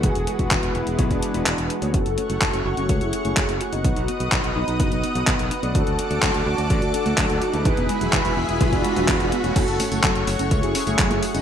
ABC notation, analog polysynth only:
X:1
M:4/4
L:1/16
Q:1/4=126
K:F#m
V:1 name="Analog polysynth"
G3 F3 E3 D6 z | [FA]3 [FA]3 [A,F]3 [EG]6 z | [^DF]3 [DF]3 [B,D]3 [B,D]6 z | [FA]3 [FA]3 [DF]3 [FA]6 z |
[GB]3 [GB]3 [EG]3 [DF]6 z | [FA]3 [FA]3 [A,F]3 [EG]6 z |]